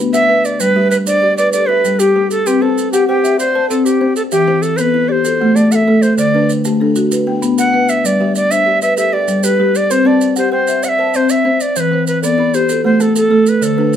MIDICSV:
0, 0, Header, 1, 5, 480
1, 0, Start_track
1, 0, Key_signature, 1, "major"
1, 0, Tempo, 309917
1, 940, Time_signature, 12, 3, 24, 8
1, 21629, End_track
2, 0, Start_track
2, 0, Title_t, "Native American-style wooden flute"
2, 0, Program_c, 0, 77
2, 204, Note_on_c, 0, 76, 95
2, 701, Note_on_c, 0, 74, 92
2, 725, Note_off_c, 0, 76, 0
2, 933, Note_on_c, 0, 71, 106
2, 956, Note_off_c, 0, 74, 0
2, 1398, Note_off_c, 0, 71, 0
2, 1407, Note_on_c, 0, 71, 87
2, 1500, Note_off_c, 0, 71, 0
2, 1651, Note_on_c, 0, 74, 103
2, 2103, Note_off_c, 0, 74, 0
2, 2129, Note_on_c, 0, 74, 95
2, 2352, Note_off_c, 0, 74, 0
2, 2361, Note_on_c, 0, 74, 99
2, 2601, Note_on_c, 0, 71, 99
2, 2624, Note_off_c, 0, 74, 0
2, 3087, Note_on_c, 0, 67, 84
2, 3110, Note_off_c, 0, 71, 0
2, 3568, Note_off_c, 0, 67, 0
2, 3578, Note_on_c, 0, 69, 94
2, 3821, Note_on_c, 0, 67, 93
2, 3844, Note_off_c, 0, 69, 0
2, 4054, Note_on_c, 0, 69, 87
2, 4077, Note_off_c, 0, 67, 0
2, 4514, Note_off_c, 0, 69, 0
2, 4523, Note_on_c, 0, 67, 90
2, 4755, Note_off_c, 0, 67, 0
2, 4766, Note_on_c, 0, 67, 87
2, 5220, Note_off_c, 0, 67, 0
2, 5254, Note_on_c, 0, 72, 97
2, 5704, Note_off_c, 0, 72, 0
2, 5725, Note_on_c, 0, 69, 84
2, 5961, Note_on_c, 0, 67, 84
2, 5984, Note_off_c, 0, 69, 0
2, 6438, Note_off_c, 0, 67, 0
2, 6447, Note_on_c, 0, 69, 88
2, 6540, Note_off_c, 0, 69, 0
2, 6684, Note_on_c, 0, 67, 93
2, 7157, Note_on_c, 0, 69, 87
2, 7180, Note_off_c, 0, 67, 0
2, 7385, Note_on_c, 0, 72, 81
2, 7408, Note_off_c, 0, 69, 0
2, 7445, Note_on_c, 0, 71, 88
2, 7460, Note_off_c, 0, 72, 0
2, 7877, Note_on_c, 0, 74, 81
2, 7900, Note_off_c, 0, 71, 0
2, 7927, Note_on_c, 0, 72, 88
2, 7942, Note_off_c, 0, 74, 0
2, 8602, Note_on_c, 0, 74, 89
2, 8625, Note_off_c, 0, 72, 0
2, 8855, Note_on_c, 0, 78, 77
2, 8878, Note_off_c, 0, 74, 0
2, 8909, Note_on_c, 0, 76, 84
2, 8924, Note_off_c, 0, 78, 0
2, 9326, Note_on_c, 0, 72, 90
2, 9350, Note_off_c, 0, 76, 0
2, 9558, Note_off_c, 0, 72, 0
2, 9567, Note_on_c, 0, 74, 85
2, 10075, Note_off_c, 0, 74, 0
2, 11749, Note_on_c, 0, 78, 91
2, 12227, Note_on_c, 0, 76, 93
2, 12250, Note_off_c, 0, 78, 0
2, 12481, Note_on_c, 0, 74, 97
2, 12504, Note_off_c, 0, 76, 0
2, 12942, Note_off_c, 0, 74, 0
2, 12951, Note_on_c, 0, 74, 90
2, 13181, Note_on_c, 0, 76, 101
2, 13204, Note_off_c, 0, 74, 0
2, 13653, Note_off_c, 0, 76, 0
2, 13663, Note_on_c, 0, 76, 96
2, 13883, Note_off_c, 0, 76, 0
2, 13900, Note_on_c, 0, 76, 104
2, 14141, Note_on_c, 0, 74, 99
2, 14164, Note_off_c, 0, 76, 0
2, 14618, Note_on_c, 0, 71, 87
2, 14641, Note_off_c, 0, 74, 0
2, 15123, Note_on_c, 0, 74, 98
2, 15146, Note_off_c, 0, 71, 0
2, 15347, Note_on_c, 0, 72, 96
2, 15370, Note_off_c, 0, 74, 0
2, 15592, Note_on_c, 0, 74, 87
2, 15616, Note_off_c, 0, 72, 0
2, 16065, Note_off_c, 0, 74, 0
2, 16072, Note_on_c, 0, 72, 87
2, 16288, Note_off_c, 0, 72, 0
2, 16297, Note_on_c, 0, 72, 88
2, 16789, Note_on_c, 0, 78, 91
2, 16813, Note_off_c, 0, 72, 0
2, 16862, Note_on_c, 0, 76, 99
2, 16877, Note_off_c, 0, 78, 0
2, 17284, Note_on_c, 0, 72, 90
2, 17307, Note_off_c, 0, 76, 0
2, 17508, Note_on_c, 0, 76, 93
2, 17531, Note_off_c, 0, 72, 0
2, 17986, Note_on_c, 0, 74, 95
2, 18009, Note_off_c, 0, 76, 0
2, 18221, Note_on_c, 0, 72, 95
2, 18245, Note_off_c, 0, 74, 0
2, 18278, Note_on_c, 0, 71, 104
2, 18294, Note_off_c, 0, 72, 0
2, 18693, Note_off_c, 0, 71, 0
2, 18703, Note_on_c, 0, 71, 87
2, 18923, Note_off_c, 0, 71, 0
2, 18945, Note_on_c, 0, 74, 99
2, 19431, Note_on_c, 0, 72, 99
2, 19454, Note_off_c, 0, 74, 0
2, 19891, Note_off_c, 0, 72, 0
2, 19900, Note_on_c, 0, 72, 80
2, 20155, Note_on_c, 0, 69, 87
2, 20178, Note_off_c, 0, 72, 0
2, 20386, Note_off_c, 0, 69, 0
2, 20403, Note_on_c, 0, 69, 78
2, 20888, Note_on_c, 0, 71, 81
2, 20911, Note_off_c, 0, 69, 0
2, 21116, Note_on_c, 0, 69, 89
2, 21140, Note_off_c, 0, 71, 0
2, 21587, Note_off_c, 0, 69, 0
2, 21629, End_track
3, 0, Start_track
3, 0, Title_t, "Marimba"
3, 0, Program_c, 1, 12
3, 0, Note_on_c, 1, 59, 78
3, 0, Note_on_c, 1, 71, 63
3, 0, Note_on_c, 1, 78, 56
3, 202, Note_off_c, 1, 78, 0
3, 220, Note_on_c, 1, 78, 70
3, 436, Note_off_c, 1, 71, 0
3, 455, Note_on_c, 1, 71, 66
3, 462, Note_off_c, 1, 59, 0
3, 934, Note_on_c, 1, 55, 81
3, 938, Note_off_c, 1, 71, 0
3, 941, Note_off_c, 1, 78, 0
3, 1176, Note_on_c, 1, 76, 64
3, 1418, Note_off_c, 1, 55, 0
3, 1661, Note_on_c, 1, 62, 80
3, 1899, Note_on_c, 1, 74, 60
3, 1900, Note_off_c, 1, 76, 0
3, 2142, Note_off_c, 1, 62, 0
3, 2146, Note_on_c, 1, 71, 83
3, 2390, Note_on_c, 1, 67, 60
3, 2621, Note_off_c, 1, 74, 0
3, 2624, Note_off_c, 1, 71, 0
3, 2628, Note_on_c, 1, 76, 60
3, 2860, Note_on_c, 1, 55, 80
3, 3080, Note_off_c, 1, 67, 0
3, 3099, Note_on_c, 1, 67, 73
3, 3328, Note_off_c, 1, 67, 0
3, 3341, Note_off_c, 1, 55, 0
3, 3346, Note_off_c, 1, 76, 0
3, 3346, Note_on_c, 1, 67, 77
3, 3825, Note_off_c, 1, 67, 0
3, 3825, Note_on_c, 1, 60, 84
3, 4056, Note_on_c, 1, 81, 62
3, 4304, Note_off_c, 1, 60, 0
3, 4547, Note_on_c, 1, 67, 87
3, 4779, Note_off_c, 1, 81, 0
3, 4783, Note_on_c, 1, 79, 63
3, 5015, Note_on_c, 1, 76, 84
3, 5024, Note_off_c, 1, 67, 0
3, 5260, Note_on_c, 1, 72, 65
3, 5498, Note_on_c, 1, 81, 65
3, 5499, Note_off_c, 1, 76, 0
3, 5503, Note_off_c, 1, 79, 0
3, 5736, Note_on_c, 1, 60, 85
3, 5981, Note_off_c, 1, 72, 0
3, 6207, Note_on_c, 1, 72, 76
3, 6219, Note_off_c, 1, 60, 0
3, 6220, Note_off_c, 1, 81, 0
3, 6694, Note_off_c, 1, 72, 0
3, 6700, Note_on_c, 1, 52, 88
3, 6933, Note_on_c, 1, 72, 65
3, 7180, Note_off_c, 1, 52, 0
3, 7417, Note_on_c, 1, 59, 77
3, 7657, Note_off_c, 1, 72, 0
3, 7887, Note_on_c, 1, 67, 83
3, 7899, Note_off_c, 1, 59, 0
3, 8127, Note_on_c, 1, 69, 66
3, 8134, Note_off_c, 1, 67, 0
3, 8370, Note_on_c, 1, 78, 63
3, 8609, Note_on_c, 1, 57, 80
3, 8835, Note_off_c, 1, 69, 0
3, 8854, Note_on_c, 1, 69, 75
3, 9080, Note_off_c, 1, 69, 0
3, 9094, Note_off_c, 1, 57, 0
3, 9095, Note_off_c, 1, 78, 0
3, 9099, Note_on_c, 1, 69, 73
3, 9570, Note_on_c, 1, 50, 76
3, 9579, Note_off_c, 1, 69, 0
3, 9814, Note_on_c, 1, 71, 59
3, 10055, Note_off_c, 1, 50, 0
3, 10306, Note_on_c, 1, 57, 81
3, 10536, Note_off_c, 1, 71, 0
3, 10538, Note_on_c, 1, 69, 57
3, 10778, Note_on_c, 1, 66, 87
3, 10782, Note_off_c, 1, 57, 0
3, 11018, Note_off_c, 1, 66, 0
3, 11018, Note_on_c, 1, 71, 61
3, 11258, Note_off_c, 1, 69, 0
3, 11260, Note_on_c, 1, 79, 66
3, 11497, Note_on_c, 1, 59, 78
3, 11738, Note_off_c, 1, 71, 0
3, 11977, Note_on_c, 1, 71, 78
3, 11978, Note_off_c, 1, 59, 0
3, 11979, Note_off_c, 1, 79, 0
3, 12457, Note_off_c, 1, 71, 0
3, 12457, Note_on_c, 1, 55, 78
3, 12704, Note_on_c, 1, 76, 64
3, 12937, Note_off_c, 1, 55, 0
3, 13183, Note_on_c, 1, 62, 77
3, 13421, Note_off_c, 1, 76, 0
3, 13428, Note_on_c, 1, 74, 59
3, 13660, Note_off_c, 1, 62, 0
3, 13667, Note_on_c, 1, 71, 79
3, 13897, Note_on_c, 1, 67, 63
3, 14139, Note_on_c, 1, 76, 61
3, 14142, Note_off_c, 1, 71, 0
3, 14143, Note_off_c, 1, 74, 0
3, 14373, Note_on_c, 1, 55, 83
3, 14598, Note_off_c, 1, 67, 0
3, 14617, Note_on_c, 1, 67, 74
3, 14843, Note_off_c, 1, 67, 0
3, 14855, Note_off_c, 1, 55, 0
3, 14858, Note_off_c, 1, 76, 0
3, 14861, Note_on_c, 1, 67, 78
3, 15339, Note_off_c, 1, 67, 0
3, 15346, Note_on_c, 1, 60, 84
3, 15577, Note_on_c, 1, 81, 59
3, 15821, Note_off_c, 1, 60, 0
3, 16068, Note_on_c, 1, 67, 82
3, 16294, Note_on_c, 1, 79, 60
3, 16297, Note_off_c, 1, 81, 0
3, 16543, Note_off_c, 1, 67, 0
3, 16552, Note_on_c, 1, 76, 82
3, 16780, Note_on_c, 1, 72, 67
3, 17016, Note_off_c, 1, 79, 0
3, 17024, Note_off_c, 1, 76, 0
3, 17032, Note_on_c, 1, 81, 62
3, 17272, Note_on_c, 1, 60, 77
3, 17483, Note_off_c, 1, 72, 0
3, 17502, Note_on_c, 1, 72, 76
3, 17727, Note_off_c, 1, 72, 0
3, 17744, Note_off_c, 1, 81, 0
3, 17745, Note_off_c, 1, 60, 0
3, 17745, Note_on_c, 1, 72, 78
3, 18221, Note_off_c, 1, 72, 0
3, 18223, Note_on_c, 1, 52, 89
3, 18478, Note_on_c, 1, 72, 65
3, 18700, Note_off_c, 1, 52, 0
3, 18958, Note_on_c, 1, 59, 79
3, 19187, Note_off_c, 1, 72, 0
3, 19196, Note_on_c, 1, 83, 60
3, 19426, Note_on_c, 1, 67, 86
3, 19428, Note_off_c, 1, 59, 0
3, 19662, Note_off_c, 1, 67, 0
3, 19667, Note_on_c, 1, 69, 63
3, 19901, Note_on_c, 1, 78, 64
3, 19907, Note_off_c, 1, 83, 0
3, 20139, Note_on_c, 1, 57, 86
3, 20360, Note_off_c, 1, 69, 0
3, 20378, Note_on_c, 1, 69, 75
3, 20598, Note_off_c, 1, 69, 0
3, 20617, Note_on_c, 1, 69, 80
3, 20618, Note_off_c, 1, 57, 0
3, 20619, Note_off_c, 1, 78, 0
3, 21088, Note_on_c, 1, 50, 78
3, 21097, Note_off_c, 1, 69, 0
3, 21327, Note_on_c, 1, 71, 65
3, 21573, Note_off_c, 1, 50, 0
3, 21629, Note_off_c, 1, 71, 0
3, 21629, End_track
4, 0, Start_track
4, 0, Title_t, "Kalimba"
4, 0, Program_c, 2, 108
4, 0, Note_on_c, 2, 59, 81
4, 213, Note_on_c, 2, 71, 61
4, 215, Note_off_c, 2, 59, 0
4, 431, Note_off_c, 2, 71, 0
4, 449, Note_on_c, 2, 71, 66
4, 451, Note_on_c, 2, 59, 72
4, 936, Note_off_c, 2, 59, 0
4, 1175, Note_on_c, 2, 55, 88
4, 1176, Note_off_c, 2, 71, 0
4, 1176, Note_on_c, 2, 67, 75
4, 1659, Note_off_c, 2, 55, 0
4, 1660, Note_on_c, 2, 72, 63
4, 1872, Note_off_c, 2, 67, 0
4, 1891, Note_on_c, 2, 67, 78
4, 2373, Note_on_c, 2, 69, 65
4, 2382, Note_off_c, 2, 72, 0
4, 2597, Note_off_c, 2, 67, 0
4, 2616, Note_on_c, 2, 67, 84
4, 3075, Note_off_c, 2, 67, 0
4, 3094, Note_on_c, 2, 67, 61
4, 3098, Note_off_c, 2, 69, 0
4, 3341, Note_on_c, 2, 55, 83
4, 3819, Note_off_c, 2, 67, 0
4, 3822, Note_off_c, 2, 55, 0
4, 3822, Note_on_c, 2, 71, 70
4, 4056, Note_on_c, 2, 72, 71
4, 4060, Note_on_c, 2, 60, 82
4, 4302, Note_off_c, 2, 71, 0
4, 4542, Note_off_c, 2, 60, 0
4, 4543, Note_on_c, 2, 78, 69
4, 4761, Note_off_c, 2, 72, 0
4, 4781, Note_on_c, 2, 72, 82
4, 5262, Note_off_c, 2, 72, 0
4, 5263, Note_off_c, 2, 78, 0
4, 5265, Note_on_c, 2, 74, 64
4, 5504, Note_on_c, 2, 72, 85
4, 5956, Note_off_c, 2, 72, 0
4, 5975, Note_on_c, 2, 72, 66
4, 5983, Note_off_c, 2, 74, 0
4, 6214, Note_on_c, 2, 60, 85
4, 6691, Note_on_c, 2, 76, 65
4, 6698, Note_off_c, 2, 60, 0
4, 6698, Note_off_c, 2, 72, 0
4, 6931, Note_on_c, 2, 52, 88
4, 6935, Note_on_c, 2, 64, 74
4, 7176, Note_off_c, 2, 76, 0
4, 7411, Note_on_c, 2, 69, 66
4, 7416, Note_off_c, 2, 52, 0
4, 7632, Note_off_c, 2, 64, 0
4, 7652, Note_on_c, 2, 64, 81
4, 8136, Note_off_c, 2, 64, 0
4, 8136, Note_off_c, 2, 69, 0
4, 8139, Note_on_c, 2, 66, 62
4, 8386, Note_on_c, 2, 57, 85
4, 8620, Note_off_c, 2, 66, 0
4, 8863, Note_off_c, 2, 57, 0
4, 8865, Note_on_c, 2, 69, 62
4, 9104, Note_on_c, 2, 57, 81
4, 9582, Note_off_c, 2, 57, 0
4, 9582, Note_off_c, 2, 69, 0
4, 9582, Note_on_c, 2, 72, 63
4, 9825, Note_on_c, 2, 62, 76
4, 9828, Note_on_c, 2, 50, 86
4, 10060, Note_off_c, 2, 72, 0
4, 10304, Note_off_c, 2, 50, 0
4, 10310, Note_on_c, 2, 67, 68
4, 10532, Note_off_c, 2, 62, 0
4, 10552, Note_on_c, 2, 62, 81
4, 11023, Note_on_c, 2, 64, 65
4, 11024, Note_off_c, 2, 67, 0
4, 11025, Note_off_c, 2, 62, 0
4, 11260, Note_on_c, 2, 59, 83
4, 11500, Note_off_c, 2, 64, 0
4, 11739, Note_off_c, 2, 59, 0
4, 11745, Note_on_c, 2, 71, 63
4, 11987, Note_on_c, 2, 59, 77
4, 12461, Note_off_c, 2, 71, 0
4, 12463, Note_off_c, 2, 59, 0
4, 12473, Note_on_c, 2, 74, 67
4, 12709, Note_on_c, 2, 55, 85
4, 12711, Note_on_c, 2, 67, 73
4, 12945, Note_off_c, 2, 74, 0
4, 13183, Note_off_c, 2, 55, 0
4, 13192, Note_on_c, 2, 72, 66
4, 13397, Note_off_c, 2, 67, 0
4, 13415, Note_on_c, 2, 67, 81
4, 13890, Note_on_c, 2, 69, 63
4, 13905, Note_off_c, 2, 72, 0
4, 14117, Note_off_c, 2, 67, 0
4, 14136, Note_on_c, 2, 67, 85
4, 14597, Note_off_c, 2, 67, 0
4, 14614, Note_off_c, 2, 69, 0
4, 14615, Note_on_c, 2, 67, 64
4, 14858, Note_on_c, 2, 55, 83
4, 15332, Note_on_c, 2, 71, 62
4, 15336, Note_off_c, 2, 67, 0
4, 15338, Note_off_c, 2, 55, 0
4, 15567, Note_on_c, 2, 60, 83
4, 15567, Note_on_c, 2, 72, 74
4, 15814, Note_off_c, 2, 71, 0
4, 16044, Note_on_c, 2, 78, 70
4, 16052, Note_off_c, 2, 60, 0
4, 16268, Note_off_c, 2, 72, 0
4, 16289, Note_on_c, 2, 72, 80
4, 16771, Note_off_c, 2, 78, 0
4, 16773, Note_off_c, 2, 72, 0
4, 16779, Note_on_c, 2, 74, 63
4, 17017, Note_on_c, 2, 72, 87
4, 17479, Note_off_c, 2, 72, 0
4, 17498, Note_off_c, 2, 74, 0
4, 17498, Note_on_c, 2, 72, 62
4, 17732, Note_on_c, 2, 60, 89
4, 18209, Note_on_c, 2, 76, 62
4, 18215, Note_off_c, 2, 60, 0
4, 18217, Note_off_c, 2, 72, 0
4, 18453, Note_on_c, 2, 52, 80
4, 18693, Note_off_c, 2, 76, 0
4, 18935, Note_off_c, 2, 52, 0
4, 18936, Note_on_c, 2, 69, 68
4, 19175, Note_on_c, 2, 64, 82
4, 19656, Note_off_c, 2, 69, 0
4, 19659, Note_on_c, 2, 66, 65
4, 19893, Note_on_c, 2, 57, 81
4, 19897, Note_off_c, 2, 64, 0
4, 20138, Note_off_c, 2, 66, 0
4, 20367, Note_on_c, 2, 69, 65
4, 20375, Note_off_c, 2, 57, 0
4, 20608, Note_on_c, 2, 57, 81
4, 21092, Note_off_c, 2, 69, 0
4, 21093, Note_off_c, 2, 57, 0
4, 21100, Note_on_c, 2, 72, 62
4, 21342, Note_on_c, 2, 50, 86
4, 21343, Note_on_c, 2, 62, 68
4, 21579, Note_off_c, 2, 72, 0
4, 21629, Note_off_c, 2, 50, 0
4, 21629, Note_off_c, 2, 62, 0
4, 21629, End_track
5, 0, Start_track
5, 0, Title_t, "Drums"
5, 218, Note_on_c, 9, 70, 65
5, 373, Note_off_c, 9, 70, 0
5, 694, Note_on_c, 9, 70, 48
5, 849, Note_off_c, 9, 70, 0
5, 929, Note_on_c, 9, 70, 82
5, 1084, Note_off_c, 9, 70, 0
5, 1414, Note_on_c, 9, 70, 65
5, 1569, Note_off_c, 9, 70, 0
5, 1651, Note_on_c, 9, 70, 82
5, 1806, Note_off_c, 9, 70, 0
5, 2141, Note_on_c, 9, 70, 62
5, 2295, Note_off_c, 9, 70, 0
5, 2370, Note_on_c, 9, 70, 73
5, 2525, Note_off_c, 9, 70, 0
5, 2862, Note_on_c, 9, 70, 66
5, 3016, Note_off_c, 9, 70, 0
5, 3091, Note_on_c, 9, 70, 77
5, 3246, Note_off_c, 9, 70, 0
5, 3573, Note_on_c, 9, 70, 61
5, 3728, Note_off_c, 9, 70, 0
5, 3813, Note_on_c, 9, 70, 77
5, 3968, Note_off_c, 9, 70, 0
5, 4304, Note_on_c, 9, 70, 59
5, 4459, Note_off_c, 9, 70, 0
5, 4542, Note_on_c, 9, 70, 72
5, 4697, Note_off_c, 9, 70, 0
5, 5030, Note_on_c, 9, 70, 61
5, 5185, Note_off_c, 9, 70, 0
5, 5257, Note_on_c, 9, 70, 67
5, 5412, Note_off_c, 9, 70, 0
5, 5741, Note_on_c, 9, 70, 61
5, 5896, Note_off_c, 9, 70, 0
5, 5978, Note_on_c, 9, 70, 66
5, 6133, Note_off_c, 9, 70, 0
5, 6445, Note_on_c, 9, 70, 49
5, 6600, Note_off_c, 9, 70, 0
5, 6685, Note_on_c, 9, 70, 70
5, 6840, Note_off_c, 9, 70, 0
5, 7167, Note_on_c, 9, 70, 50
5, 7321, Note_off_c, 9, 70, 0
5, 7401, Note_on_c, 9, 70, 70
5, 7556, Note_off_c, 9, 70, 0
5, 8127, Note_on_c, 9, 70, 66
5, 8282, Note_off_c, 9, 70, 0
5, 8616, Note_on_c, 9, 70, 61
5, 8771, Note_off_c, 9, 70, 0
5, 8856, Note_on_c, 9, 70, 68
5, 9011, Note_off_c, 9, 70, 0
5, 9332, Note_on_c, 9, 70, 56
5, 9487, Note_off_c, 9, 70, 0
5, 9570, Note_on_c, 9, 70, 77
5, 9725, Note_off_c, 9, 70, 0
5, 10056, Note_on_c, 9, 70, 56
5, 10211, Note_off_c, 9, 70, 0
5, 10294, Note_on_c, 9, 70, 77
5, 10449, Note_off_c, 9, 70, 0
5, 10774, Note_on_c, 9, 70, 65
5, 10929, Note_off_c, 9, 70, 0
5, 11019, Note_on_c, 9, 70, 74
5, 11174, Note_off_c, 9, 70, 0
5, 11500, Note_on_c, 9, 70, 65
5, 11655, Note_off_c, 9, 70, 0
5, 11741, Note_on_c, 9, 70, 83
5, 11896, Note_off_c, 9, 70, 0
5, 12215, Note_on_c, 9, 70, 68
5, 12370, Note_off_c, 9, 70, 0
5, 12469, Note_on_c, 9, 70, 81
5, 12624, Note_off_c, 9, 70, 0
5, 12936, Note_on_c, 9, 70, 68
5, 13091, Note_off_c, 9, 70, 0
5, 13180, Note_on_c, 9, 70, 81
5, 13335, Note_off_c, 9, 70, 0
5, 13657, Note_on_c, 9, 70, 64
5, 13812, Note_off_c, 9, 70, 0
5, 13898, Note_on_c, 9, 70, 72
5, 14053, Note_off_c, 9, 70, 0
5, 14370, Note_on_c, 9, 70, 67
5, 14525, Note_off_c, 9, 70, 0
5, 14610, Note_on_c, 9, 70, 77
5, 14765, Note_off_c, 9, 70, 0
5, 15101, Note_on_c, 9, 70, 58
5, 15256, Note_off_c, 9, 70, 0
5, 15341, Note_on_c, 9, 70, 75
5, 15496, Note_off_c, 9, 70, 0
5, 15815, Note_on_c, 9, 70, 55
5, 15970, Note_off_c, 9, 70, 0
5, 16048, Note_on_c, 9, 70, 76
5, 16203, Note_off_c, 9, 70, 0
5, 16528, Note_on_c, 9, 70, 61
5, 16683, Note_off_c, 9, 70, 0
5, 16773, Note_on_c, 9, 70, 73
5, 16928, Note_off_c, 9, 70, 0
5, 17253, Note_on_c, 9, 70, 63
5, 17408, Note_off_c, 9, 70, 0
5, 17491, Note_on_c, 9, 70, 71
5, 17646, Note_off_c, 9, 70, 0
5, 17972, Note_on_c, 9, 70, 62
5, 18127, Note_off_c, 9, 70, 0
5, 18213, Note_on_c, 9, 70, 76
5, 18368, Note_off_c, 9, 70, 0
5, 18698, Note_on_c, 9, 70, 60
5, 18853, Note_off_c, 9, 70, 0
5, 18944, Note_on_c, 9, 70, 78
5, 19099, Note_off_c, 9, 70, 0
5, 19422, Note_on_c, 9, 70, 57
5, 19577, Note_off_c, 9, 70, 0
5, 19653, Note_on_c, 9, 70, 67
5, 19808, Note_off_c, 9, 70, 0
5, 20138, Note_on_c, 9, 70, 62
5, 20293, Note_off_c, 9, 70, 0
5, 20377, Note_on_c, 9, 70, 68
5, 20532, Note_off_c, 9, 70, 0
5, 20852, Note_on_c, 9, 70, 52
5, 21007, Note_off_c, 9, 70, 0
5, 21099, Note_on_c, 9, 70, 73
5, 21254, Note_off_c, 9, 70, 0
5, 21579, Note_on_c, 9, 70, 53
5, 21629, Note_off_c, 9, 70, 0
5, 21629, End_track
0, 0, End_of_file